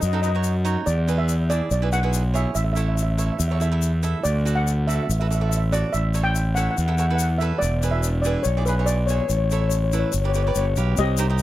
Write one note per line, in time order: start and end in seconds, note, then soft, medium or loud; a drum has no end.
0.01 0.76 F#2 loud
0.01 0.06 D#5 soft
0.01 shaker medium
0.08 0.14 D#5 soft
0.13 0.19 D#4 medium
0.13 0.19 F#4 medium
0.13 0.20 A4 medium
0.13 0.21 D#5 soft
0.22 0.30 D#4 medium
0.22 0.30 F#4 medium
0.22 0.30 B4 medium
0.22 0.27 D#5 medium
0.22 shaker medium
0.29 0.35 D#5 medium
0.35 0.53 D#4 medium
0.35 0.54 F#4 soft
0.35 0.54 C#5 medium
0.44 shaker medium
0.65 0.86 D#4 medium
0.65 0.86 F#4 medium
0.65 0.86 C#5 loud
0.65 shaker medium
0.86 1.60 E2 medium
0.86 1.19 D5 medium
0.86 shaker medium
1.08 1.33 E4 medium
1.08 1.33 G#4 medium
1.08 1.34 B4 medium
1.08 shaker medium
1.18 1.51 E5 medium
1.29 shaker medium
1.50 1.69 E4 medium
1.50 1.69 G#4 medium
1.50 1.70 D5 medium
1.50 1.69 D5 medium
1.50 shaker medium
1.71 2.45 B1 loud
1.71 1.93 D5 medium
1.71 shaker medium
1.82 1.88 E4 medium
1.82 1.88 G#4 medium
1.82 1.89 B4 medium
1.92 1.99 E4 medium
1.92 1.99 G#4 soft
1.92 1.99 B4 medium
1.92 2.32 F#5 loud
1.92 shaker medium
2.03 2.22 E4 medium
2.03 2.22 G#4 medium
2.03 2.22 B4 medium
2.13 shaker medium
2.34 2.55 E4 medium
2.34 2.55 G#4 medium
2.34 2.55 C#5 medium
2.34 2.54 E5 medium
2.34 shaker medium
2.55 3.29 A1 medium
2.55 2.63 E5 medium
2.55 shaker medium
2.64 2.71 E5 medium
2.73 3.02 E4 medium
2.73 3.02 A4 medium
2.73 2.78 E5 medium
2.73 shaker medium
2.77 3.02 C#5 medium
2.77 2.86 E5 medium
2.88 2.94 E5 medium
2.95 3.01 E5 soft
2.95 shaker loud
3.03 3.09 E5 medium
3.11 3.17 E5 soft
3.18 3.38 E4 medium
3.18 3.37 A4 medium
3.18 3.38 C#5 medium
3.18 3.24 E5 medium
3.18 shaker medium
3.26 3.32 E5 soft
3.33 3.38 E5 medium
3.39 4.13 E2 loud
3.39 3.46 E5 soft
3.39 shaker loud
3.48 3.57 E4 medium
3.48 3.57 A4 medium
3.48 3.57 C#5 medium
3.48 3.54 E5 medium
3.55 3.60 E5 medium
3.60 3.67 E4 medium
3.60 3.68 A4 medium
3.60 3.68 E5 medium
3.60 3.69 E5 medium
3.60 shaker medium
3.72 3.91 E4 medium
3.72 3.91 A4 medium
3.72 3.91 E5 medium
3.82 shaker medium
4.03 4.24 E4 medium
4.03 4.25 A4 medium
4.03 4.25 E5 medium
4.03 shaker medium
4.23 4.98 D2 medium
4.23 4.57 D5 medium
4.23 shaker medium
4.45 4.71 F#4 medium
4.45 4.71 A4 soft
4.45 4.71 D5 medium
4.45 shaker medium
4.56 4.85 F#5 medium
4.67 shaker loud
4.87 5.07 F#4 medium
4.87 5.07 A4 medium
4.87 5.07 D5 medium
4.87 4.94 E5 medium
4.87 shaker medium
4.95 5.02 E5 medium
5.03 5.11 E5 medium
5.09 5.83 A1 loud
5.09 5.18 E5 soft
5.09 shaker medium
5.20 5.26 F#4 medium
5.20 5.26 A4 medium
5.20 5.27 B4 medium
5.20 5.26 E5 medium
5.28 5.37 F#4 medium
5.28 5.37 A4 soft
5.28 5.37 D5 medium
5.28 5.34 E5 soft
5.28 shaker medium
5.35 5.42 E5 medium
5.41 5.60 F#4 medium
5.41 5.60 A4 medium
5.41 5.60 D5 medium
5.41 5.48 E5 medium
5.49 5.56 E5 medium
5.49 shaker loud
5.57 5.64 E5 medium
5.72 5.93 F#4 medium
5.72 5.94 A4 medium
5.72 5.82 D5 medium
5.72 5.94 D5 medium
5.72 shaker medium
5.93 6.67 A1 medium
5.93 6.23 E5 loud
5.93 shaker medium
6.14 6.40 E4 medium
6.14 6.40 A4 medium
6.14 6.40 C#5 medium
6.14 shaker medium
6.24 6.57 G5 loud
6.35 shaker medium
6.55 6.76 E4 medium
6.55 6.76 A4 medium
6.55 6.76 C#5 medium
6.55 6.62 F#5 medium
6.55 shaker medium
6.63 6.70 F#5 medium
6.71 6.76 F#5 medium
6.77 7.51 E2 medium
6.77 6.85 F#5 medium
6.77 shaker medium
6.86 6.94 E4 medium
6.86 6.94 A4 medium
6.86 6.94 E5 medium
6.86 6.91 F#5 medium
6.92 6.99 F#5 medium
6.98 7.05 E4 medium
6.98 7.05 A4 medium
6.98 7.05 C#5 medium
6.98 7.07 F#5 medium
6.98 shaker medium
7.08 7.29 E4 medium
7.08 7.29 A4 medium
7.08 7.29 B4 medium
7.08 7.14 F#5 medium
7.15 7.21 F#5 medium
7.15 shaker medium
7.22 7.31 F#5 medium
7.38 7.62 E4 medium
7.38 7.62 A4 medium
7.38 7.62 B4 medium
7.38 7.61 E5 medium
7.38 shaker medium
7.58 8.35 E1 medium
7.58 7.93 D5 loud
7.58 shaker medium
7.83 8.08 E4 medium
7.83 8.08 G#4 medium
7.83 8.09 B4 medium
7.83 shaker medium
7.91 8.21 E5 medium
8.03 shaker medium
8.22 8.44 E4 medium
8.22 8.44 G#4 medium
8.22 8.45 D5 medium
8.22 shaker medium
8.26 8.44 B4 medium
8.43 9.19 B1 medium
8.43 8.66 C#5 medium
8.43 shaker medium
8.57 8.63 E4 medium
8.57 8.63 G#4 medium
8.57 8.63 D5 medium
8.66 8.74 E4 medium
8.66 8.74 G#4 medium
8.66 8.88 B4 medium
8.66 8.74 B4 medium
8.66 shaker medium
8.79 8.98 E4 medium
8.79 8.98 G#4 medium
8.79 8.97 C#5 medium
8.86 8.96 D5 medium
8.86 shaker medium
9.06 9.30 E4 medium
9.06 9.30 G#4 medium
9.06 9.14 C#5 medium
9.06 9.30 C#5 medium
9.06 shaker medium
9.15 9.20 C#5 medium
9.21 9.28 C#5 medium
9.29 10.03 A1 medium
9.29 9.36 C#5 medium
9.29 shaker medium
9.37 9.43 C#5 medium
9.44 9.52 C#5 medium
9.51 9.77 E4 medium
9.51 9.77 A4 medium
9.51 9.77 C#5 medium
9.51 9.60 C#5 medium
9.51 shaker medium
9.61 9.68 C#5 medium
9.69 9.75 C#5 medium
9.69 shaker loud
9.76 9.83 C#5 soft
9.84 9.90 C#5 medium
9.91 10.12 E4 medium
9.91 10.12 A4 soft
9.91 10.12 B4 medium
9.91 9.98 C#5 soft
9.91 shaker medium
9.99 10.05 C#5 medium
10.12 10.51 G1 loud
10.12 10.20 C#5 soft
10.12 shaker medium
10.22 10.31 G4 medium
10.22 10.31 B4 medium
10.22 10.28 C#5 soft
10.22 10.31 D5 medium
10.29 10.34 C#5 medium
10.34 10.42 G4 medium
10.34 10.42 B4 medium
10.34 10.42 C#5 soft
10.34 10.42 D5 medium
10.34 shaker medium
10.43 10.65 B4 medium
10.43 10.49 C#5 medium
10.43 10.65 D5 medium
10.48 10.65 G4 medium
10.48 10.56 C#5 soft
10.55 10.75 G1 medium
10.55 10.66 C#5 medium
10.55 shaker medium
10.76 10.96 B1 medium
10.76 10.98 G4 medium
10.76 10.98 B4 medium
10.76 10.98 F5 medium
10.76 shaker medium
10.97 11.42 C2 loud
10.97 11.42 G4 medium
10.97 11.42 D#5 medium
10.97 shaker medium
11.17 11.25 D#4 medium
11.17 11.25 G4 medium
11.17 11.26 C5 medium
11.17 shaker loud
11.30 11.42 D#4 medium
11.30 11.42 G4 medium
11.30 11.42 D#5 medium
11.38 shaker medium